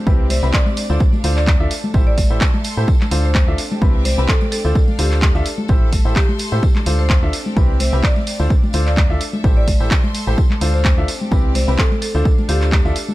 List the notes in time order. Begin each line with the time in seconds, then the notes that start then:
Already playing: C4 D4 G4 A4
0.07 C2 C4 E4 G4 B4, kick, tambourine
0.26 D5 E5, high conga
0.30 C5, open hi-hat, tambourine
0.43 C2 C4 E4 G4 B4, tambourine
0.54 D5, kick, clap, tambourine
0.66 tambourine, high conga
0.77 D4, open hi-hat, tambourine
0.90 D2 D4 F4 A4 C5, tambourine
0.96 A4, tambourine
1.00 kick
1.13 tambourine, high conga
1.20 F5
1.24 D2 D4 F4 A4 C5, open hi-hat, tambourine
1.37 D5, clap, tambourine
1.47 kick, clap, tambourine, high conga
1.60 D2 D4 F4 A4 E5
1.71 open hi-hat, tambourine
1.84 tambourine, high conga
1.89 E5
1.94 A1 E4 G4 A4 C5, kick, tambourine
2.07 D5
2.17 C6, kick, open hi-hat, tambourine, high conga
2.30 A1 E4 G4 A4 C5, tambourine
2.41 kick, clap, tambourine
2.54 tambourine, high conga
2.64 open hi-hat, tambourine
2.77 A2 E4 G4 A4 C5, tambourine
2.88 D4, kick, tambourine
3.01 clap, tambourine, high conga
3.11 D2 D4 F4 A4 C5, open hi-hat, tambourine
3.16 F5
3.24 C5, tambourine
3.35 kick, clap, tambourine, high conga
3.48 D2 D4 F4 A4 E5
3.58 C4, open hi-hat, tambourine
3.68 G4, tambourine, high conga
3.81 C2 C4 E4 G4 B4, kick, tambourine
3.91 E5
4.01 D5
4.05 C5, open hi-hat, tambourine, high conga
4.18 C2 C4 E4 G4 B4, tambourine
4.28 A4, kick, clap, tambourine
4.41 tambourine, high conga
4.52 D4 A4, open hi-hat, tambourine
4.65 D2 D4 F4 A4 C5, tambourine
4.75 F5, kick, tambourine
4.88 tambourine, high conga
4.99 D2 D4 F4 G4 A4 C5, open hi-hat, tambourine
5.12 G4, clap, tambourine
5.22 kick, clap, tambourine, high conga
5.35 D2 D4 F4 A4 E5, tambourine
5.46 open hi-hat, tambourine
5.58 tambourine, high conga
5.68 A1 E4 G4 A4 C5 E5, kick, tambourine
5.92 kick, open hi-hat, tambourine, high conga
5.99 C6
6.05 A1 E4 G4 A4 C5, tambourine
6.16 G4, kick, clap, tambourine
6.29 tambourine, high conga
6.39 open hi-hat, tambourine
6.52 A2 E4 G4 A4 C5, tambourine
6.63 D4, kick, tambourine
6.75 clap, tambourine, high conga
6.86 D2 D4 F4 A4 C5, open hi-hat, tambourine
6.95 C5 F5, tambourine
7.09 kick, clap, tambourine, high conga
7.22 D2 D4 F4 A4 E5
7.33 C4, open hi-hat, tambourine
7.39 G4
7.46 tambourine, high conga
7.57 C2 C4 E4 G4 B4, kick, tambourine
7.68 D5
7.76 E5, high conga
7.80 C5, open hi-hat, tambourine
7.93 C2 C4 E4 G4 B4, tambourine
8.03 D5, kick, clap, tambourine
8.16 tambourine, high conga
8.27 D4, open hi-hat, tambourine
8.39 D2 D4 F4 A4 C5, tambourine
8.49 A4, kick, tambourine
8.63 tambourine, high conga
8.70 F5, tambourine
8.74 D2 D4 F4 A4 C5, open hi-hat
8.86 D5, clap, tambourine
8.97 kick, clap, tambourine, high conga
9.10 D2 D4 F4 A4 E5
9.21 open hi-hat, tambourine
9.30 E5, tambourine, high conga
9.44 A1 E4 G4 A4 C5, kick, tambourine
9.57 D5
9.67 kick, open hi-hat, tambourine, high conga
9.74 C6
9.80 A1 E4 G4 A4 C5, tambourine
9.91 kick, clap, tambourine
10.04 tambourine, high conga
10.14 open hi-hat, tambourine
10.27 A1 E4 G4 A4 C5, tambourine
10.38 D4, kick, tambourine
10.50 clap, tambourine, high conga
10.61 D2 D4 F4 A4 C5, open hi-hat, tambourine
10.70 C5 F5, tambourine
10.85 kick, clap, tambourine, high conga
10.98 D2 D4 F4 A4 E5
11.08 C4, open hi-hat, tambourine
11.14 G4
11.21 tambourine, high conga
11.29 C2 C4 E4 G4 B4 D5, kick, tambourine
11.51 E5
11.55 C5, open hi-hat, tambourine, high conga
11.68 C2 C4 E4 G4 B4, tambourine
11.78 A4, kick, clap, tambourine
11.92 tambourine, high conga
12.02 D4 A4, open hi-hat, tambourine
12.15 D2 D4 F4 A4 C5, tambourine
12.22 A4 F5, kick, tambourine
12.38 tambourine, high conga
12.49 D2 D4 F4 G4 A4 C5, open hi-hat, tambourine
12.61 clap, tambourine
12.72 kick, clap, tambourine, high conga
12.85 D2 D4 F4 A4 E5, tambourine
12.96 open hi-hat, tambourine
13.09 tambourine, high conga